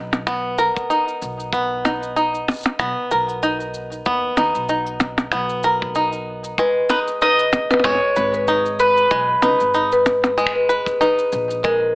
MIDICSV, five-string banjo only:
0, 0, Header, 1, 2, 480
1, 0, Start_track
1, 0, Tempo, 631579
1, 1166, Time_signature, 4, 2, 24, 8
1, 9082, End_track
2, 0, Start_track
2, 0, Title_t, "Five-string banjo"
2, 0, Program_c, 0, 105
2, 0, Note_on_c, 0, 59, 79
2, 0, Note_on_c, 0, 63, 67
2, 0, Note_on_c, 0, 70, 70
2, 200, Note_off_c, 0, 59, 0
2, 203, Note_on_c, 0, 59, 85
2, 434, Note_off_c, 0, 70, 0
2, 444, Note_on_c, 0, 70, 71
2, 684, Note_off_c, 0, 63, 0
2, 684, Note_on_c, 0, 63, 67
2, 1160, Note_off_c, 0, 59, 0
2, 1163, Note_on_c, 0, 59, 75
2, 1405, Note_off_c, 0, 63, 0
2, 1405, Note_on_c, 0, 63, 65
2, 1644, Note_off_c, 0, 63, 0
2, 1644, Note_on_c, 0, 63, 70
2, 2120, Note_off_c, 0, 59, 0
2, 2123, Note_on_c, 0, 59, 80
2, 2356, Note_off_c, 0, 70, 0
2, 2365, Note_on_c, 0, 70, 63
2, 2605, Note_off_c, 0, 63, 0
2, 2605, Note_on_c, 0, 63, 70
2, 3082, Note_off_c, 0, 59, 0
2, 3085, Note_on_c, 0, 59, 81
2, 3325, Note_off_c, 0, 63, 0
2, 3325, Note_on_c, 0, 63, 60
2, 3566, Note_off_c, 0, 63, 0
2, 3566, Note_on_c, 0, 63, 61
2, 4043, Note_off_c, 0, 59, 0
2, 4046, Note_on_c, 0, 59, 78
2, 4278, Note_off_c, 0, 70, 0
2, 4287, Note_on_c, 0, 70, 67
2, 4525, Note_off_c, 0, 63, 0
2, 4525, Note_on_c, 0, 63, 68
2, 5008, Note_on_c, 0, 56, 83
2, 5060, Note_off_c, 0, 70, 0
2, 5110, Note_off_c, 0, 59, 0
2, 5244, Note_off_c, 0, 63, 0
2, 5244, Note_on_c, 0, 63, 58
2, 5476, Note_off_c, 0, 63, 0
2, 5485, Note_on_c, 0, 63, 67
2, 5965, Note_off_c, 0, 56, 0
2, 5965, Note_on_c, 0, 56, 75
2, 6204, Note_on_c, 0, 71, 65
2, 6436, Note_off_c, 0, 63, 0
2, 6445, Note_on_c, 0, 63, 71
2, 6924, Note_off_c, 0, 56, 0
2, 6924, Note_on_c, 0, 56, 78
2, 7153, Note_off_c, 0, 63, 0
2, 7162, Note_on_c, 0, 63, 59
2, 7396, Note_off_c, 0, 63, 0
2, 7405, Note_on_c, 0, 63, 62
2, 7885, Note_off_c, 0, 56, 0
2, 7885, Note_on_c, 0, 56, 86
2, 8116, Note_off_c, 0, 71, 0
2, 8125, Note_on_c, 0, 71, 68
2, 8356, Note_off_c, 0, 63, 0
2, 8365, Note_on_c, 0, 63, 75
2, 8846, Note_off_c, 0, 56, 0
2, 8846, Note_on_c, 0, 56, 75
2, 8899, Note_off_c, 0, 63, 0
2, 8899, Note_off_c, 0, 71, 0
2, 9082, Note_off_c, 0, 56, 0
2, 9082, End_track
0, 0, End_of_file